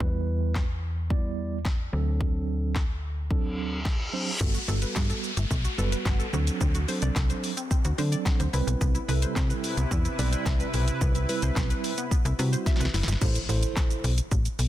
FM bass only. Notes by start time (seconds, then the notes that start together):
0.00 E2
1.93 D2
4.41 G1
4.68 G1
4.96 G2
5.37 G1
5.51 B1
5.78 F#1
6.05 G1
6.33 D2
6.61 D2
7.02 C2
7.16 C2
7.85 D2
7.99 D3
8.40 D2
8.54 C2
8.67 B1
8.81 C2
9.09 C2
9.36 C3
9.77 C2
9.91 E2
10.19 B1
10.46 C2
10.74 B1
11.01 C2
11.43 C2
11.56 B1
12.25 C2
12.39 C3
12.80 C2
12.94 F#1
13.08 G1
13.22 A1
13.49 A1
14.04 B1
14.31 A1
14.59 B1